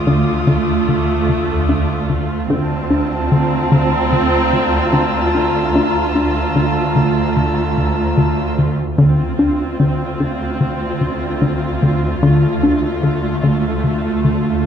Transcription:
Already playing: synth drone D2, cello section D2, viola section A3 F4, violin section D6 D#6
0.07 analog synth bass D3
0.47 analog synth bass D3
0.88 analog synth bass D3
1.29 analog synth bass D3
1.69 analog synth bass D3
2.09 analog synth bass D3
2.50 cello section D2, double bass section D2, synth drone D2, analog synth bass D3, viola section C4 F4, violin section A5
2.90 analog synth bass D4
3.32 analog synth bass D3, violin section A#5
3.72 analog synth bass D3
4.12 analog synth bass D3, violin section E6
4.53 analog synth bass D3
4.93 analog synth bass D3
5.35 analog synth bass D3
5.74 analog synth bass D3, viola section A3
6.15 analog synth bass D4
6.56 analog synth bass D3
6.96 analog synth bass D3
7.36 analog synth bass D3
7.77 analog synth bass D3
8.17 analog synth bass D3
8.58 analog synth bass D3
8.98 cello section D2, double bass section D2, synth drone D2, analog synth bass D3, viola section C4 F4
9.39 analog synth bass D4
9.80 analog synth bass D3
10.20 analog synth bass D3
10.61 analog synth bass D3
11.01 analog synth bass D3
11.42 analog synth bass D3
11.83 analog synth bass D3
12.23 analog synth bass D3, viola section A3
12.63 analog synth bass D4
13.03 analog synth bass D3
13.43 analog synth bass D3
13.84 analog synth bass D3
14.25 analog synth bass D3

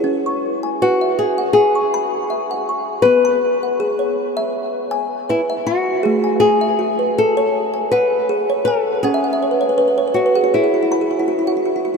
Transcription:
0.00 kalimba C#4 E4
0.26 kalimba C#6
0.63 kalimba G#5
0.82 nylon-string guitar F#4, kalimba B4
1.01 kalimba E5
1.19 nylon-string guitar G#4
1.38 kalimba F#5
1.53 nylon-string guitar G#4
1.75 kalimba C#6
1.94 kalimba B5
2.30 kalimba E5
2.51 kalimba F#5
2.69 kalimba C#6
3.02 kalimba B3, nylon-string guitar B4
3.25 kalimba B5
3.63 kalimba F#5
3.80 kalimba G#4
3.99 kalimba C#5
4.37 kalimba E5
4.91 kalimba G#5
5.29 nylon-string guitar E4, kalimba B4
5.50 kalimba E5
5.66 nylon-string guitar F#4, kalimba B5
6.03 kalimba A3 G#4
6.24 kalimba G#5
6.40 nylon-string guitar G#4
6.61 kalimba E5
6.79 kalimba F#4
6.99 kalimba B4
7.18 nylon-string guitar A4
7.37 kalimba C#5
7.74 kalimba G#5
7.91 nylon-string guitar B4, kalimba F#5
8.29 kalimba G#4
8.50 kalimba C#5
8.65 nylon-string guitar A4, kalimba G#5
9.03 kalimba C#4 F#5, nylon-string guitar G#4
9.14 kalimba E5
9.24 kalimba F#5
9.33 kalimba E5
9.43 kalimba C#5
9.51 kalimba B4
9.61 kalimba C#5
9.69 kalimba B4
9.78 kalimba B4 C#5
9.88 kalimba B4
9.98 kalimba C#5
10.08 kalimba B4
10.14 nylon-string guitar F#4, kalimba C#5
10.26 kalimba B4
10.35 kalimba G#4 F#5
10.44 kalimba F#4
10.54 nylon-string guitar E4, kalimba G#4
10.64 kalimba G#4
10.74 kalimba F#4
10.83 kalimba E4
10.92 kalimba F#4 B5
11.01 kalimba G#4
11.11 kalimba F#4
11.20 kalimba E4
11.28 kalimba F#4
11.39 kalimba E4
11.47 kalimba F#4 F#5
11.57 kalimba E4
11.66 kalimba F#4
11.76 kalimba E4
11.85 kalimba F#4

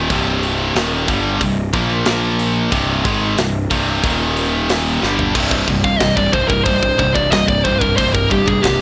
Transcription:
Already playing: distorted electric guitar D#3
0.10 picked electric bass C1, distorted electric guitar C2 G2 C3, kick, open hi-hat
0.43 open hi-hat
0.75 picked electric bass D#1, distorted electric guitar D#2 A#2 D#3, snare, open hi-hat
1.08 picked electric bass G1, distorted electric guitar G2 D3 G3, kick, open hi-hat
1.41 picked electric bass C1, distorted electric guitar C2 G2, kick, open hi-hat
1.73 picked electric bass A#1, distorted electric guitar A#2 F3 A#3, kick, open hi-hat
2.06 picked electric bass A#1, distorted electric guitar A#2 F3 A#3, snare, open hi-hat
2.39 open hi-hat
2.71 picked electric bass C1, distorted electric guitar C2 G2 C3, kick, open hi-hat
3.05 picked electric bass G#1, distorted electric guitar G#2 D#3 G#3, kick, open hi-hat
3.37 picked electric bass C1, distorted electric guitar C2 G2, snare, open hi-hat
3.71 picked electric bass C1, distorted electric guitar C2 G2 C3, kick, open hi-hat
4.03 picked electric bass D#1, distorted electric guitar D#2 A#2 D#3, kick, open hi-hat
4.37 open hi-hat
4.70 snare, open hi-hat
5.02 picked electric bass G1, distorted electric guitar G2 D3 G3, snare
5.19 floor tom
5.34 picked electric bass C1, distorted electric guitar C2 G2 C3, pipe organ C3 G3 D4 D#4, kick, crash
5.51 kick
5.67 picked electric bass C1, distorted electric guitar C2 G2, kick, crash
5.84 distorted electric guitar C2 G2, lead electric guitar F5, kick
5.99 picked electric bass C1, distorted electric guitar C2 G2, lead electric guitar D#5, kick, snare, crash
6.17 distorted electric guitar C2 G2, lead electric guitar D5, kick
6.32 picked electric bass C1, distorted electric guitar C2 G2, lead electric guitar C5, kick, crash
6.48 distorted electric guitar C2 G2, lead electric guitar A#4, kick
6.65 picked electric bass C1, distorted electric guitar C2 G2, lead electric guitar C5, kick, crash
6.83 kick
6.98 picked electric bass C1, distorted electric guitar C2 G2, kick, crash
7.14 distorted electric guitar C2 G2, lead electric guitar D5, kick
7.30 picked electric bass C1, distorted electric guitar C2 G2, lead electric guitar D#5, kick, snare, crash
7.48 lead electric guitar D5, kick
7.64 picked electric bass C1, distorted electric guitar C2 G2, lead electric guitar C5, kick, crash
7.81 distorted electric guitar C2 G2, lead electric guitar A#4, kick
7.97 picked electric bass C1, distorted electric guitar C2 G2, lead electric guitar C5, kick, crash
8.14 lead electric guitar A#4, kick
8.30 picked electric bass G1, distorted electric guitar C2 G2, lead electric guitar G4, kick, crash
8.46 distorted electric guitar C2 G2, lead electric guitar G#4, kick
8.63 picked electric bass C1, distorted electric guitar C2 G2, lead electric guitar G4, kick, snare, crash

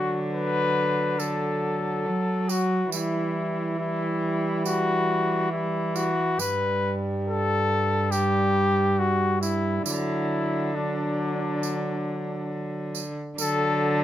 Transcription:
Already playing: cello D3, trombone F#3, cornet F#4
0.33 cornet B4
1.19 trombone F#3, cornet A4, tambourine
2.06 cello F#3
2.49 cornet F#4, tambourine
2.91 cello E3, trombone G3, cornet E4, tambourine
3.78 trombone G3, cornet E4
4.66 cornet F#4, tambourine
5.51 trombone G3, cornet E4
5.96 cornet F#4, tambourine
6.38 cello G2, trombone G3, cornet B4, tambourine
7.27 cornet A4
8.11 trombone G3, cornet G4, tambourine
8.99 cornet F#4
9.41 cornet E4, tambourine
9.85 cello D3, trombone F#3, cornet E4, tambourine
10.74 trombone F#3, cornet D4
11.63 tambourine
12.95 tambourine
13.37 cello D3, trombone F#3, cornet A4, tambourine

